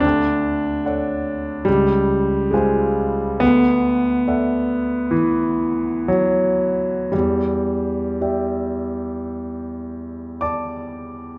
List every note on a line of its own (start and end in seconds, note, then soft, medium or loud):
0.00 0.81 D2 soft
0.00 1.65 D4 medium
0.85 1.63 A4 soft
0.85 1.64 C#5 soft
0.85 1.63 D5 soft
0.85 1.64 F#5 soft
1.65 2.50 C#2 soft
1.65 2.52 G3 medium
2.51 3.40 G#3 medium
2.51 3.38 F4 soft
2.51 3.38 C5 soft
2.51 3.38 F5 soft
2.51 3.38 G#5 soft
3.40 4.25 D2 medium
3.40 5.13 B3 medium
4.27 7.09 A4 soft
4.27 7.09 D5 soft
4.27 7.09 E5 soft
4.27 7.09 F#5 soft
5.11 6.08 E3 medium
6.08 7.12 F#3 medium
7.12 8.18 E2 soft
7.12 10.42 G3 medium
8.21 11.38 G4 soft
8.21 10.40 D5 soft
8.21 11.38 E5 soft
8.21 11.38 G5 soft
10.41 11.38 D5 soft
10.41 11.38 A5 soft
10.41 11.38 D6 medium